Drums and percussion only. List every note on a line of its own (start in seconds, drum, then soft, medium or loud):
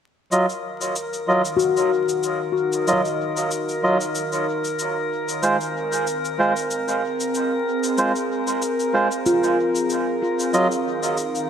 0.32 cabasa soft
0.49 cabasa soft
0.81 cabasa soft
0.96 cabasa soft
1.13 cabasa soft
1.45 cabasa soft
1.59 cabasa soft
1.77 cabasa soft
2.09 cabasa soft
2.23 cabasa soft
2.73 cabasa soft
2.87 cabasa soft
3.05 cabasa soft
3.37 cabasa soft
3.51 cabasa soft
3.69 cabasa soft
4.01 cabasa soft
4.15 cabasa soft
4.32 cabasa soft
4.64 cabasa soft
4.79 cabasa soft
5.29 cabasa soft
5.43 cabasa soft
5.61 cabasa soft
5.93 cabasa soft
6.07 cabasa soft
6.25 cabasa soft
6.56 cabasa soft
6.71 cabasa soft
6.88 cabasa soft
7.20 cabasa soft
7.34 cabasa soft
7.83 cabasa soft
7.98 cabasa soft
8.16 cabasa soft
8.47 cabasa soft
8.62 cabasa soft
8.80 cabasa soft
9.12 cabasa soft
9.26 cabasa soft
9.43 cabasa soft
9.75 cabasa soft
9.90 cabasa soft
10.40 cabasa soft
10.54 cabasa soft
10.71 cabasa soft
11.03 cabasa soft
11.17 cabasa soft
11.35 cabasa soft